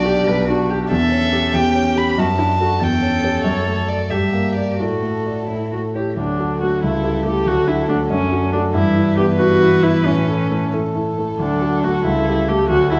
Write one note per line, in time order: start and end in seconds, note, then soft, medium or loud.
0.00 0.26 B1 soft
0.00 0.19 D4 soft
0.00 0.69 D5 medium
0.05 0.40 G4 soft
0.05 0.29 G4 soft
0.27 0.89 B1 soft
0.27 0.49 B4 medium
0.49 0.83 D4 soft
0.49 0.72 F#4 soft
0.70 0.91 G4 soft
0.70 0.90 G4 soft
0.91 1.52 E2 soft
0.91 1.57 A4 medium
0.91 1.56 E5 medium
1.12 1.45 C#4 soft
1.33 1.66 G4 soft
1.54 2.15 E2 soft
1.54 2.17 G4 medium
1.54 1.99 G5 medium
1.75 2.09 C#4 soft
1.96 2.17 G4 soft
1.96 2.21 B5 medium
2.18 2.80 F#2 soft
2.18 2.26 F#4 medium
2.18 2.85 A5 medium
2.38 2.73 D4 soft
2.38 2.46 E4 soft
2.60 2.79 F#4 soft
2.60 2.82 F#4 soft
2.60 2.79 A4 soft
2.80 3.43 E2 soft
2.80 4.12 A4 medium
2.80 3.45 G5 medium
3.02 3.36 C#4 soft
3.24 3.43 G4 soft
3.24 3.43 C#5 soft
3.44 4.08 F#2 soft
3.44 3.90 C#5 medium
3.67 4.02 A3 soft
3.89 4.09 A4 soft
3.89 4.12 D5 soft
3.89 4.09 D5 soft
4.10 4.77 G2 soft
4.10 4.78 G4 soft
4.10 4.55 E5 soft
4.33 4.70 A#3 soft
4.56 4.77 G4 soft
4.56 4.82 D5 soft
4.56 4.77 D5 soft
4.78 5.46 A2 soft
4.78 5.42 F#4 soft
4.78 5.96 A4 soft
5.03 5.40 A3 soft
5.26 5.47 F#4 soft
5.26 5.47 D5 soft
5.48 6.15 A2 soft
5.48 5.70 E4 soft
5.72 6.09 A3 soft
5.72 5.80 F#4 soft
5.95 6.16 E4 soft
5.95 6.17 G4 soft
5.95 6.16 C#5 soft
6.17 6.39 D2 soft
6.17 6.84 F#3 soft
6.17 6.59 D4 soft
6.17 8.77 A4 soft
6.39 6.59 F#4 soft
6.39 6.59 A4 soft
6.61 6.81 A3 soft
6.61 6.83 F#4 soft
6.61 6.81 F#4 soft
6.61 6.82 A4 soft
6.83 7.04 C#2 soft
6.83 7.47 G3 soft
6.83 7.25 E4 soft
7.04 7.23 E4 soft
7.04 7.23 G4 soft
7.25 7.45 A3 soft
7.25 7.45 E4 soft
7.25 7.49 G4 medium
7.25 7.45 G4 soft
7.46 7.67 D2 soft
7.46 8.77 F#3 soft
7.46 7.69 F#4 medium
7.67 7.87 D4 soft
7.67 7.88 E4 medium
7.67 7.87 F#4 soft
7.88 8.08 A3 soft
7.88 8.08 D4 soft
7.88 7.97 D4 soft
7.88 8.09 F#4 soft
8.10 8.31 F#2 soft
8.10 8.52 C#4 medium
8.31 8.51 D4 soft
8.31 8.51 F#4 soft
8.53 8.73 A3 soft
8.53 8.61 D4 medium
8.53 8.73 D4 soft
8.53 8.73 F#4 soft
8.74 8.95 G2 soft
8.74 11.19 E3 medium
8.74 9.16 E4 medium
8.74 10.74 B4 medium
8.95 9.15 E4 soft
9.17 9.37 B3 soft
9.17 9.37 E4 soft
9.17 9.25 G4 medium
9.39 9.59 B3 soft
9.39 9.59 E4 soft
9.39 9.85 F#4 medium
9.62 9.81 E4 soft
9.83 10.03 B3 soft
9.83 10.03 E4 soft
9.83 10.07 E4 medium
10.06 10.27 A2 soft
10.06 10.72 C#4 medium
10.28 10.48 E4 soft
10.28 10.48 A4 soft
10.50 10.70 A3 soft
10.50 10.70 E4 soft
10.50 10.71 A4 soft
10.72 10.93 A3 soft
10.72 10.93 E4 soft
10.72 12.70 A4 soft
10.72 10.93 A4 soft
10.95 11.15 E4 soft
10.95 11.15 A4 soft
11.18 11.38 A3 soft
11.18 11.38 E4 soft
11.18 11.38 A4 soft
11.39 11.61 D2 soft
11.39 12.07 F#3 soft
11.39 11.85 D4 medium
11.61 11.81 F#4 soft
11.61 11.82 A4 soft
11.84 12.04 A3 soft
11.84 12.05 F#4 medium
11.84 12.04 F#4 soft
11.84 12.04 A4 soft
12.05 12.26 C#2 soft
12.05 12.69 G3 soft
12.05 12.50 E4 medium
12.28 12.47 G4 soft
12.28 12.47 A4 soft
12.48 12.68 A3 soft
12.48 12.69 G4 medium
12.48 12.68 G4 soft
12.48 12.68 A4 soft
12.69 12.90 D2 soft
12.69 13.00 F#3 medium
12.69 12.90 F#4 medium
12.69 13.00 A4 soft
12.91 12.99 E4 medium
12.91 13.00 F#4 soft
12.91 13.00 A4 soft